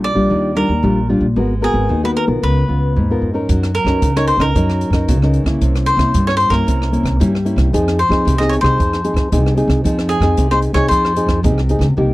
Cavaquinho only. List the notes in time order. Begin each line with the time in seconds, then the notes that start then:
0.04 D5
0.57 A#4
1.64 G#4
2.05 B4
2.17 A#4
2.43 B4
3.75 A#4
4.17 C#5
4.27 C5
4.41 A#4
5.86 C5
6.27 C#5
6.37 C5
6.50 A#4
7.99 C5
8.38 D#5
8.49 C#5
8.61 C5
10.09 G#4
10.51 C5
10.74 C#5
10.88 C5